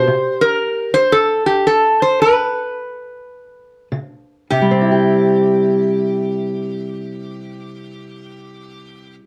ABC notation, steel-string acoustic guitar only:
X:1
M:4/4
L:1/8
Q:"Swing" 1/4=100
K:C
V:1 name="Steel-string acoustic guitar" clef=bass
C,2 z6 | z6 _D,2 | [C,G,CEG]8- | [C,G,CEG]8 |]